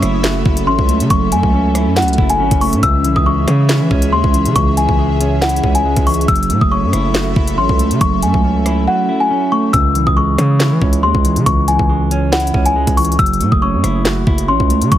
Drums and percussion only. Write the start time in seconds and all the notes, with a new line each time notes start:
0.02 cross-stick, closed hi-hat
0.24 snare, clap, closed hi-hat
0.46 kick
0.57 closed hi-hat
0.79 kick
0.89 closed hi-hat
1.00 closed hi-hat
1.10 kick, closed hi-hat
1.32 closed hi-hat
1.43 kick
1.75 cross-stick, closed hi-hat
1.97 snare, clap, closed hi-hat
2.02 closed hi-hat
2.08 closed hi-hat
2.13 closed hi-hat
2.18 kick
2.30 closed hi-hat
2.51 kick, closed hi-hat
2.61 closed hi-hat, open hi-hat
2.73 closed hi-hat
2.83 kick, closed hi-hat
3.04 closed hi-hat
3.16 kick
3.48 cross-stick, closed hi-hat
3.69 snare, clap, closed hi-hat
3.91 kick
4.02 closed hi-hat
4.24 kick
4.34 closed hi-hat
4.46 closed hi-hat
4.56 kick, closed hi-hat
4.77 closed hi-hat
4.89 kick
5.21 closed hi-hat
5.42 snare, clap, closed hi-hat
5.49 closed hi-hat
5.56 closed hi-hat
5.64 kick
5.75 closed hi-hat
5.97 kick, closed hi-hat
6.07 closed hi-hat, open hi-hat
6.14 closed hi-hat
6.21 closed hi-hat
6.28 kick, closed hi-hat
6.36 closed hi-hat
6.43 closed hi-hat
6.50 closed hi-hat
6.61 kick
6.93 cross-stick, closed hi-hat
7.15 snare, clap, closed hi-hat
7.36 kick
7.48 closed hi-hat
7.69 kick
7.79 closed hi-hat
7.91 closed hi-hat
8.01 kick, closed hi-hat
8.23 closed hi-hat
8.34 kick
8.66 cross-stick, closed hi-hat
9.74 kick, closed hi-hat
9.95 closed hi-hat
10.07 kick
10.38 cross-stick, closed hi-hat
10.60 snare, clap, closed hi-hat
10.82 kick
10.93 closed hi-hat
11.15 kick
11.25 closed hi-hat
11.36 closed hi-hat
11.46 kick, closed hi-hat
11.68 closed hi-hat
11.79 kick
12.11 closed hi-hat
12.33 snare, clap, closed hi-hat
12.40 closed hi-hat
12.47 closed hi-hat
12.54 kick
12.66 closed hi-hat
12.87 kick, closed hi-hat
12.97 closed hi-hat, open hi-hat
13.05 closed hi-hat
13.12 closed hi-hat
13.19 kick, closed hi-hat
13.26 closed hi-hat
13.33 closed hi-hat
13.41 closed hi-hat
13.52 kick
13.84 cross-stick, closed hi-hat
14.05 snare, clap, closed hi-hat
14.27 kick
14.38 closed hi-hat
14.60 kick
14.70 closed hi-hat
14.82 closed hi-hat
14.92 kick, closed hi-hat